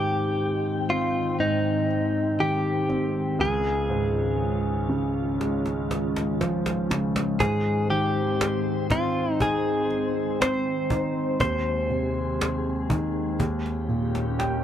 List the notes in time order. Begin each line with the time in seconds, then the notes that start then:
Already playing: G#2 D#3 G#3 C4 G4 G5
0.89 C4 F4
1.40 G#2 D#4
2.40 D#3 G4
2.89 C4
3.39 C#2 D#3 C#4 F4 G#4
3.90 G#2
4.89 C#3
5.41 G#3, cajon slap
5.66 cajon slap
5.91 cajon slap
6.16 cajon slap
6.41 F3, cajon slap
6.66 cajon slap
6.91 C#3, cajon slap
7.16 cajon slap
7.40 G#2 C4 G#4 C5, cajon bass
7.90 D#3 G4, cajon slap
8.15 cajon slap
8.41 cajon slap
8.90 C4 F4, cajon bass
9.40 D#4 G#4, cajon bass
9.91 cajon slap
10.40 C4 C5, cajon slap
10.90 D#4, cajon bass
11.40 D#2 G#4 C5, cajon bass
11.90 C3, cajon slap
12.15 cajon slap
12.41 cajon slap
12.90 D#3, cajon bass
13.40 D#2 D#3 A#3 C#4 G4, cajon bass, cajon slap
13.66 cajon slap
13.88 A#2, cajon slap
14.15 cajon slap
14.39 G5, cajon slap